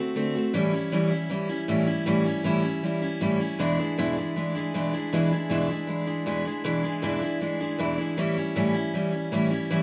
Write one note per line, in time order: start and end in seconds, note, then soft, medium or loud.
0.00 0.15 A3 medium
0.00 0.15 C4 medium
0.00 0.16 F#4 medium
0.15 0.35 D3 medium
0.15 0.35 A3 medium
0.15 0.35 C4 medium
0.15 0.34 F#4 medium
0.35 0.54 A3 soft
0.35 0.55 C4 medium
0.35 0.54 F#4 medium
0.54 0.73 A2 medium
0.54 0.73 E3 loud
0.54 0.73 G3 medium
0.54 0.72 C#4 loud
0.54 0.71 E4 loud
0.73 0.92 C#4 medium
0.73 0.92 E4 medium
0.92 1.11 A2 medium
0.92 1.11 E3 medium
0.92 1.12 G3 medium
0.92 1.11 C#4 loud
0.92 1.09 E4 medium
1.11 1.29 G3 soft
1.11 1.30 C#4 medium
1.11 1.30 E4 medium
1.30 1.49 E3 medium
1.30 1.50 G3 medium
1.30 1.50 C#4 medium
1.30 1.48 E4 medium
1.49 1.68 G3 soft
1.49 1.68 C#4 medium
1.49 1.68 E4 medium
1.68 1.87 A2 medium
1.68 1.88 E3 medium
1.68 1.88 G3 medium
1.68 1.87 C#4 loud
1.68 1.86 E4 medium
1.87 2.06 G3 soft
1.87 2.06 C#4 soft
1.87 2.06 E4 medium
2.06 2.25 A2 medium
2.06 2.26 E3 loud
2.06 2.26 G3 loud
2.06 2.25 C#4 loud
2.06 2.24 E4 loud
2.25 2.44 G3 soft
2.25 2.44 C#4 medium
2.25 2.44 E4 medium
2.44 2.63 A2 medium
2.44 2.64 E3 medium
2.44 2.64 G3 medium
2.44 2.63 C#4 loud
2.44 2.62 E4 loud
2.63 2.82 G3 soft
2.63 2.83 C#4 medium
2.63 2.83 E4 medium
2.83 3.02 E3 medium
2.83 3.02 G3 medium
2.83 3.02 C#4 medium
2.83 3.00 E4 medium
3.02 3.21 G3 soft
3.02 3.21 C#4 soft
3.02 3.21 E4 medium
3.21 3.40 A2 medium
3.21 3.40 E3 medium
3.21 3.40 G3 medium
3.21 3.39 C#4 medium
3.21 3.38 E4 medium
3.40 3.59 G3 soft
3.40 3.59 C#4 soft
3.40 3.59 E4 medium
3.59 3.78 E2 medium
3.59 3.78 B2 medium
3.59 3.78 E3 medium
3.59 3.78 G#3 medium
3.59 3.78 D4 loud
3.59 3.77 E4 loud
3.78 3.97 E3 soft
3.78 3.98 G#3 medium
3.78 3.98 D4 medium
3.78 3.97 E4 medium
3.98 4.17 E2 medium
3.98 4.17 B2 medium
3.98 4.17 E3 loud
3.98 4.17 G#3 loud
3.98 4.17 D4 loud
3.98 4.15 E4 loud
4.17 4.35 E3 soft
4.17 4.36 G#3 medium
4.17 4.36 D4 medium
4.17 4.36 E4 medium
4.36 4.55 E3 medium
4.36 4.55 G#3 medium
4.36 4.55 D4 medium
4.36 4.54 E4 medium
4.55 4.74 E3 soft
4.55 4.74 G#3 medium
4.55 4.74 D4 medium
4.55 4.74 E4 medium
4.74 4.93 E2 medium
4.74 4.93 B2 medium
4.74 4.93 E3 medium
4.74 4.93 G#3 medium
4.74 4.93 D4 loud
4.74 4.92 E4 medium
4.93 5.12 E3 soft
4.93 5.12 G#3 soft
4.93 5.12 D4 medium
4.93 5.12 E4 medium
5.12 5.31 E2 medium
5.12 5.31 B2 medium
5.12 5.32 E3 loud
5.12 5.32 G#3 loud
5.12 5.31 D4 medium
5.12 5.30 E4 medium
5.31 5.49 E3 soft
5.31 5.50 G#3 soft
5.31 5.50 D4 medium
5.31 5.50 E4 medium
5.49 5.69 E2 medium
5.49 5.69 B2 medium
5.49 5.69 E3 medium
5.49 5.69 G#3 medium
5.49 5.69 D4 medium
5.49 5.68 E4 loud
5.69 5.86 E3 soft
5.69 5.87 G#3 soft
5.69 5.88 D4 soft
5.69 5.88 E4 medium
5.87 6.07 E3 medium
5.87 6.06 G#3 medium
5.87 6.06 D4 medium
5.87 6.05 E4 medium
6.06 6.25 E3 soft
6.06 6.26 G#3 medium
6.06 6.26 D4 medium
6.06 6.26 E4 medium
6.26 6.45 E2 medium
6.26 6.45 B2 medium
6.26 6.46 E3 medium
6.26 6.46 G#3 medium
6.26 6.45 D4 medium
6.26 6.44 E4 loud
6.45 6.64 E3 soft
6.45 6.64 G#3 medium
6.45 6.64 D4 medium
6.45 6.64 E4 medium
6.64 6.83 E2 medium
6.64 6.84 B2 loud
6.64 6.84 E3 medium
6.64 6.83 G#3 loud
6.64 6.83 D4 loud
6.64 6.82 E4 loud
6.83 7.02 E3 soft
6.83 7.02 G#3 medium
6.83 7.03 D4 medium
6.83 7.02 E4 medium
7.02 7.22 E2 medium
7.02 7.22 B2 medium
7.02 7.22 E3 medium
7.02 7.22 G#3 loud
7.02 7.22 D4 loud
7.02 7.20 E4 loud
7.22 7.39 E3 medium
7.22 7.40 G#3 medium
7.22 7.41 D4 medium
7.22 7.41 E4 medium
7.41 7.60 E3 medium
7.41 7.60 G#3 medium
7.41 7.59 D4 medium
7.41 7.58 E4 medium
7.60 7.78 E3 medium
7.60 7.79 G#3 medium
7.60 7.79 D4 medium
7.60 7.79 E4 medium
7.79 7.98 E2 medium
7.79 7.98 B2 medium
7.79 7.98 E3 medium
7.79 7.99 G#3 medium
7.79 7.98 D4 medium
7.79 7.97 E4 medium
7.98 8.16 E3 soft
7.98 8.17 G#3 medium
7.98 8.18 D4 soft
7.98 8.17 E4 medium
8.17 8.36 A2 medium
8.17 8.37 E3 medium
8.17 8.37 G3 loud
8.17 8.36 C#4 loud
8.17 8.35 E4 loud
8.37 8.55 G3 soft
8.37 8.56 C#4 medium
8.37 8.56 E4 medium
8.56 8.75 A2 medium
8.56 8.75 E3 loud
8.56 8.75 G3 loud
8.56 8.74 C#4 loud
8.56 8.73 E4 loud
8.74 8.93 G3 soft
8.74 8.94 C#4 soft
8.74 8.94 E4 medium
8.94 9.13 E3 medium
8.94 9.13 G3 medium
8.94 9.13 C#4 medium
8.94 9.11 E4 medium
9.12 9.32 G3 soft
9.12 9.32 C#4 soft
9.12 9.32 E4 medium
9.32 9.51 A2 medium
9.32 9.51 E3 medium
9.32 9.52 G3 medium
9.32 9.51 C#4 medium
9.32 9.50 E4 medium
9.51 9.70 G3 medium
9.51 9.70 C#4 medium
9.51 9.70 E4 medium
9.70 9.83 A2 medium
9.70 9.83 E3 loud
9.70 9.83 G3 medium
9.70 9.83 C#4 loud
9.70 9.83 E4 loud